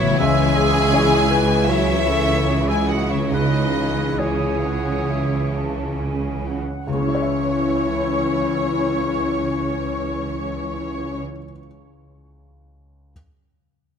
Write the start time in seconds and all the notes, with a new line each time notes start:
Already playing: A1 A2 E3 F#3 B3 C#4 E4 C#5 E5
0.02 C#3
0.07 C#4
0.11 E3
0.15 C#5 E5 G#5
0.20 C#2 C#3 E3 G#3 C#4 G#4 E5
0.57 E3 G#4
0.92 E3 C#4 E4 G#4 C#5
1.30 E3 B4
1.68 E3 F#3 C#4 E4 C#5 E5
2.08 E3 A4
2.48 E4 G#4
2.68 G#3 G#4 E5 G#5
2.88 F#3 F#4 D#5 F#5
3.09 E3 E4 C#5 E5
3.14 C#3
3.18 C#4
3.27 C#5
3.31 C#2 E3 C#4 D#4 G#4 B4 D#5
4.19 C#4 E4 G#4 C#5 G#5
4.23 C#3
4.64 F#5
5.10 E5
5.53 A5
5.97 G#5
6.45 F#5
6.86 C#2 C#3 E3 C#4 E4 C#5 C#6
6.94 C#3 C#4
7.00 C#4 E4
7.08 E4 C#5
7.15 C#5 E5
7.22 E5